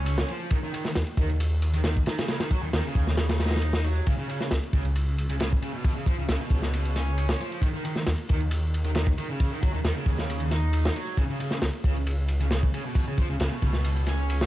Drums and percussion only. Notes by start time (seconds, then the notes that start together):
0.06 ride
0.18 snare
0.28 ride
0.40 ride
0.50 kick, ride
0.74 ride
0.85 snare
0.95 snare, ride
1.07 ride
1.17 kick, ride
1.29 ride
1.40 ride
1.62 ride
1.73 ride
1.84 snare, ride
1.97 kick
2.06 snare, ride
2.18 snare, ride
2.28 snare, ride
2.40 snare, ride
2.51 kick, ride
2.73 snare, ride
2.95 kick, ride
3.07 snare
3.17 snare, ride
3.29 snare, ride
3.40 snare, ride
3.46 snare, ride
3.51 snare, ride
3.56 snare, ride
3.62 ride
3.73 snare
3.84 ride
3.95 ride
4.06 kick, ride
4.29 ride
4.41 snare
4.51 snare, ride
4.63 ride
4.73 kick, ride
4.85 ride
4.95 ride
5.18 ride
5.29 ride
5.40 snare, ride
5.53 kick
5.62 ride
5.84 kick, ride
6.06 kick, ride
6.29 snare, ride
6.50 kick, ride
6.62 snare
6.73 ride
6.85 ride
6.96 snare, ride
7.18 ride
7.29 snare
7.40 ride
7.52 ride
7.62 kick, ride
7.85 ride
7.96 snare
8.07 snare, ride
8.18 ride
8.29 kick, ride
8.40 ride
8.51 ride
8.74 ride
8.84 ride
8.95 snare, ride
9.07 kick
9.18 ride
9.40 kick, ride
9.63 kick, ride
9.85 snare, ride
10.06 kick, ride
10.18 snare
10.30 ride
10.40 ride
10.51 snare, ride
10.73 ride
10.85 snare
10.96 ride
11.07 ride
11.17 kick, ride
11.40 ride
11.51 snare
11.62 snare, ride
11.73 ride
11.84 kick, ride
11.96 ride
12.07 ride
12.28 ride
12.40 ride
12.51 snare, ride
12.63 kick
12.74 ride
12.95 kick, ride
13.18 kick, ride
13.40 snare, ride
13.62 kick, ride
13.73 snare
13.84 ride
13.96 ride
14.07 snare, ride
14.30 ride
14.41 snare